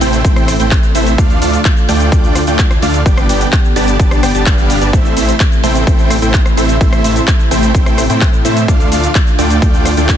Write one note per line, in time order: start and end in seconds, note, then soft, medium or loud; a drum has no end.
0.00 0.22 A1 loud
0.00 1.14 C3 medium
0.00 3.02 A3 medium
0.00 0.22 A3 medium
0.00 0.22 C4 medium
0.00 1.14 E4 loud
0.00 0.22 E4 medium
0.00 0.22 C5 medium
0.00 0.22 G5 medium
0.00 open hi-hat loud
0.00 shaker medium
0.13 closed hi-hat medium
0.13 shaker soft
0.24 0.57 A1 loud
0.24 0.54 A3 medium
0.24 0.54 C4 medium
0.24 0.54 E4 medium
0.24 0.54 C5 medium
0.24 0.54 G5 medium
0.24 kick loud
0.24 closed hi-hat medium
0.24 shaker soft
0.36 cross-stick medium
0.36 closed hi-hat soft
0.36 shaker soft
0.48 cross-stick medium
0.48 open hi-hat loud
0.48 shaker medium
0.60 0.93 A1 loud
0.60 0.78 A3 medium
0.60 0.78 C4 medium
0.60 0.78 E4 medium
0.60 0.78 C5 medium
0.60 0.78 G5 loud
0.60 closed hi-hat medium
0.60 shaker soft
0.71 kick loud
0.71 clap loud
0.71 closed hi-hat medium
0.71 shaker soft
0.83 closed hi-hat soft
0.83 shaker soft
0.95 1.16 A1 loud
0.95 1.13 A3 loud
0.95 1.13 C4 medium
0.95 1.13 E4 medium
0.95 1.13 C5 medium
0.95 1.13 E5 loud
0.95 open hi-hat medium
0.95 shaker medium
1.07 closed hi-hat medium
1.07 shaker soft
1.18 1.39 D2 loud
1.18 4.90 D3 medium
1.18 1.39 A3 loud
1.18 1.39 D4 medium
1.18 3.04 F4 loud
1.18 1.39 F4 medium
1.18 1.39 D5 medium
1.18 1.39 F5 loud
1.18 kick loud
1.18 closed hi-hat medium
1.18 shaker soft
1.30 closed hi-hat soft
1.30 shaker soft
1.42 1.58 D2 loud
1.42 1.60 A3 medium
1.42 1.60 D4 medium
1.42 1.60 F4 medium
1.42 1.60 D5 medium
1.42 1.60 F5 medium
1.42 open hi-hat loud
1.42 shaker medium
1.53 closed hi-hat medium
1.53 shaker soft
1.65 kick loud
1.65 clap loud
1.65 closed hi-hat medium
1.65 shaker soft
1.77 closed hi-hat soft
1.77 shaker soft
1.89 2.10 D2 medium
1.89 2.09 A3 medium
1.89 2.09 D4 medium
1.89 2.09 F4 medium
1.89 2.09 D5 medium
1.89 2.09 G5 medium
1.89 open hi-hat loud
1.89 shaker medium
2.00 closed hi-hat medium
2.00 shaker soft
2.12 2.45 D2 loud
2.12 2.41 A3 medium
2.12 2.41 D4 medium
2.12 2.41 F4 medium
2.12 2.41 D5 medium
2.12 2.41 G5 medium
2.12 kick loud
2.12 closed hi-hat medium
2.12 shaker soft
2.24 closed hi-hat soft
2.24 shaker soft
2.35 cross-stick medium
2.35 open hi-hat loud
2.35 shaker medium
2.47 2.80 D2 loud
2.47 2.65 A3 loud
2.47 2.65 D4 medium
2.47 2.65 F4 medium
2.47 2.65 D5 medium
2.47 2.65 G5 loud
2.47 closed hi-hat soft
2.47 shaker soft
2.59 kick loud
2.59 clap loud
2.59 closed hi-hat medium
2.59 shaker soft
2.71 cross-stick medium
2.71 closed hi-hat soft
2.71 shaker soft
2.82 3.03 D2 loud
2.82 3.01 A3 medium
2.82 3.01 D4 medium
2.82 3.01 F4 medium
2.82 3.01 D5 medium
2.82 3.01 F5 loud
2.82 open hi-hat medium
2.82 shaker medium
2.94 closed hi-hat medium
2.94 shaker soft
3.06 3.27 G1 loud
3.06 4.91 B3 medium
3.06 3.26 B3 loud
3.06 3.26 D4 medium
3.06 4.91 G4 loud
3.06 3.26 G4 medium
3.06 3.26 D5 medium
3.06 3.26 G5 loud
3.06 kick loud
3.06 closed hi-hat medium
3.06 shaker soft
3.18 cross-stick medium
3.18 closed hi-hat soft
3.18 shaker soft
3.29 3.45 G1 loud
3.29 3.47 B3 medium
3.29 3.47 D4 medium
3.29 3.47 G4 medium
3.29 3.47 D5 medium
3.29 3.47 G5 medium
3.29 open hi-hat loud
3.29 shaker medium
3.41 closed hi-hat medium
3.41 shaker soft
3.53 kick loud
3.53 clap loud
3.53 closed hi-hat medium
3.53 shaker soft
3.64 closed hi-hat soft
3.64 shaker soft
3.76 3.97 G1 loud
3.76 3.97 B3 medium
3.76 3.97 D4 medium
3.76 3.97 G4 medium
3.76 3.97 D5 medium
3.76 3.97 A5 medium
3.76 open hi-hat loud
3.76 shaker medium
3.88 closed hi-hat medium
3.88 shaker soft
3.99 4.21 G1 loud
3.99 4.21 B3 medium
3.99 4.21 D4 medium
3.99 4.21 G4 medium
3.99 4.21 D5 medium
3.99 4.21 A5 loud
3.99 kick loud
3.99 closed hi-hat medium
3.99 shaker soft
4.11 cross-stick medium
4.11 closed hi-hat soft
4.11 shaker soft
4.23 4.32 G1 medium
4.23 4.32 B3 medium
4.23 4.32 D4 medium
4.23 4.32 G4 medium
4.23 4.32 D5 medium
4.23 4.32 G5 loud
4.23 cross-stick medium
4.23 open hi-hat loud
4.23 shaker medium
4.35 4.44 G1 loud
4.35 4.44 B3 loud
4.35 4.44 D4 medium
4.35 4.44 G4 medium
4.35 4.44 D5 medium
4.35 4.44 A5 loud
4.35 closed hi-hat soft
4.35 shaker soft
4.46 4.79 G1 medium
4.46 4.79 B3 medium
4.46 4.79 D4 medium
4.46 4.79 G4 medium
4.46 4.79 D5 medium
4.46 4.79 F5 medium
4.46 kick loud
4.46 clap loud
4.46 closed hi-hat medium
4.46 shaker soft
4.58 closed hi-hat soft
4.58 shaker soft
4.70 open hi-hat medium
4.70 shaker medium
4.81 4.91 G1 loud
4.81 4.90 B3 loud
4.81 4.90 D4 medium
4.81 4.90 G4 medium
4.81 4.90 D5 medium
4.81 4.90 A5 loud
4.81 closed hi-hat medium
4.81 shaker soft
4.93 5.14 A1 loud
4.93 8.65 C3 medium
4.93 5.14 A3 loud
4.93 10.17 A3 medium
4.93 5.14 C4 medium
4.93 5.14 E4 medium
4.93 8.65 E4 loud
4.93 5.14 C5 medium
4.93 5.14 E5 loud
4.93 kick loud
4.93 closed hi-hat medium
4.93 shaker soft
5.05 closed hi-hat soft
5.05 shaker soft
5.17 5.33 A1 loud
5.17 5.35 A3 medium
5.17 5.35 C4 medium
5.17 5.35 E4 medium
5.17 5.35 C5 medium
5.17 5.35 E5 medium
5.17 open hi-hat loud
5.17 shaker medium
5.29 closed hi-hat medium
5.29 shaker soft
5.40 kick loud
5.40 clap loud
5.40 closed hi-hat medium
5.40 shaker soft
5.52 closed hi-hat soft
5.52 shaker soft
5.63 5.85 A1 loud
5.63 5.84 A3 medium
5.63 5.84 C4 medium
5.63 5.84 E4 medium
5.63 5.84 C5 medium
5.63 5.84 G5 medium
5.63 open hi-hat medium
5.63 shaker medium
5.75 closed hi-hat soft
5.75 shaker soft
5.87 6.20 A1 loud
5.87 6.16 A3 medium
5.87 6.16 C4 medium
5.87 6.16 E4 medium
5.87 6.16 C5 medium
5.87 6.16 G5 medium
5.87 kick loud
5.87 closed hi-hat medium
5.87 shaker soft
5.99 closed hi-hat soft
5.99 shaker soft
6.10 cross-stick medium
6.10 open hi-hat loud
6.10 shaker medium
6.22 6.55 A1 loud
6.22 6.40 A3 loud
6.22 6.40 C4 medium
6.22 6.40 E4 medium
6.22 6.40 C5 medium
6.22 6.40 G5 loud
6.22 closed hi-hat soft
6.22 shaker soft
6.34 kick loud
6.34 clap loud
6.34 closed hi-hat soft
6.34 shaker soft
6.46 cross-stick medium
6.46 closed hi-hat soft
6.46 shaker soft
6.57 6.78 A1 loud
6.57 6.76 A3 medium
6.57 6.76 C4 medium
6.57 6.76 E4 medium
6.57 6.76 C5 medium
6.57 6.76 E5 loud
6.57 open hi-hat medium
6.57 shaker medium
6.69 closed hi-hat medium
6.69 shaker soft
6.81 7.02 A1 loud
6.81 7.01 A3 loud
6.81 7.01 C4 medium
6.81 7.01 E4 medium
6.81 7.01 C5 medium
6.81 7.01 E5 loud
6.81 kick loud
6.81 closed hi-hat medium
6.81 shaker soft
6.93 cross-stick medium
6.93 closed hi-hat soft
6.93 shaker soft
7.04 7.20 A1 loud
7.04 7.22 A3 medium
7.04 7.22 C4 medium
7.04 7.22 E4 medium
7.04 7.22 C5 medium
7.04 7.22 E5 medium
7.04 open hi-hat loud
7.04 shaker medium
7.16 closed hi-hat medium
7.16 shaker soft
7.28 kick loud
7.28 clap loud
7.28 closed hi-hat medium
7.28 shaker soft
7.39 closed hi-hat soft
7.39 shaker soft
7.51 7.72 A1 loud
7.51 7.72 A3 medium
7.51 7.72 C4 medium
7.51 7.72 E4 medium
7.51 7.72 C5 medium
7.51 7.72 G5 loud
7.51 open hi-hat medium
7.51 shaker medium
7.63 closed hi-hat medium
7.63 shaker soft
7.74 8.07 A1 loud
7.74 8.04 A3 medium
7.74 8.04 C4 medium
7.74 8.04 E4 medium
7.74 8.04 C5 medium
7.74 8.04 G5 medium
7.74 kick loud
7.74 closed hi-hat medium
7.74 shaker soft
7.86 cross-stick medium
7.86 closed hi-hat soft
7.86 shaker soft
7.98 cross-stick medium
7.98 open hi-hat loud
7.98 shaker medium
8.10 8.43 A2 loud
8.10 8.28 A3 loud
8.10 8.28 C4 medium
8.10 8.28 E4 medium
8.10 8.28 C5 medium
8.10 8.28 G5 loud
8.10 closed hi-hat medium
8.10 shaker soft
8.21 kick loud
8.21 clap loud
8.21 closed hi-hat medium
8.21 shaker soft
8.33 closed hi-hat soft
8.33 shaker soft
8.45 8.66 A2 loud
8.45 8.63 A3 loud
8.45 8.63 C4 medium
8.45 8.63 E4 medium
8.45 8.63 C5 medium
8.45 8.63 E5 loud
8.45 open hi-hat medium
8.45 shaker medium
8.57 closed hi-hat medium
8.57 shaker soft
8.68 8.89 D2 loud
8.68 10.17 D3 medium
8.68 8.89 A3 loud
8.68 8.89 D4 medium
8.68 8.89 F4 medium
8.68 10.17 F4 loud
8.68 8.89 D5 medium
8.68 8.89 F5 loud
8.68 kick loud
8.68 closed hi-hat medium
8.68 shaker soft
8.80 closed hi-hat soft
8.80 shaker soft
8.92 9.08 D2 loud
8.92 9.10 A3 medium
8.92 9.10 D4 medium
8.92 9.10 F4 medium
8.92 9.10 D5 medium
8.92 9.10 F5 medium
8.92 open hi-hat loud
8.92 shaker medium
9.04 closed hi-hat medium
9.04 shaker soft
9.15 kick loud
9.15 clap loud
9.15 closed hi-hat medium
9.15 shaker soft
9.27 closed hi-hat soft
9.27 shaker soft
9.39 9.60 D2 loud
9.39 9.59 A3 medium
9.39 9.59 D4 medium
9.39 9.59 F4 medium
9.39 9.59 D5 medium
9.39 9.59 G5 loud
9.39 open hi-hat medium
9.39 shaker medium
9.50 closed hi-hat medium
9.50 shaker soft
9.62 9.95 D2 loud
9.62 9.91 A3 medium
9.62 9.91 D4 medium
9.62 9.91 F4 medium
9.62 9.91 D5 medium
9.62 9.91 G5 loud
9.62 kick loud
9.62 closed hi-hat medium
9.62 shaker soft
9.74 closed hi-hat soft
9.74 shaker soft
9.85 cross-stick medium
9.85 open hi-hat loud
9.85 shaker medium
9.97 10.17 D2 loud
9.97 10.15 A3 loud
9.97 10.15 D4 medium
9.97 10.15 F4 medium
9.97 10.15 D5 medium
9.97 10.15 G5 loud
9.97 closed hi-hat medium
9.97 shaker soft
10.09 kick loud
10.09 clap loud
10.09 closed hi-hat medium
10.09 shaker soft